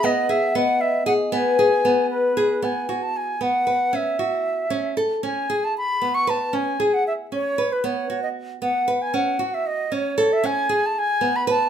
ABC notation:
X:1
M:5/8
L:1/16
Q:1/4=115
K:C#m
V:1 name="Flute"
d2 e2 f2 e2 f2 | g6 B4 | g3 a g2 f4 | e8- e2 |
g3 a b3 c' a2 | g3 f e2 c3 B | c3 d z2 f3 g | f3 e d2 c3 e |
g3 a g3 b a2 |]
V:2 name="Vibraphone"
f4 d6 | B8 z2 | z8 z2 | z8 z2 |
z8 z2 | z8 z2 | z8 z2 | z8 z2 |
z8 z2 |]
V:3 name="Nylon-string guitar"
B,2 G2 B,4 G2 | B,2 G2 B,4 G2 | B,2 F4 B,2 B2 | C2 F4 C2 A2 |
C2 G4 B,2 B2 | C2 G4 C2 B2 | B,2 F4 B,2 B2 | C2 F4 C2 A2 |
C2 G4 B,2 B2 |]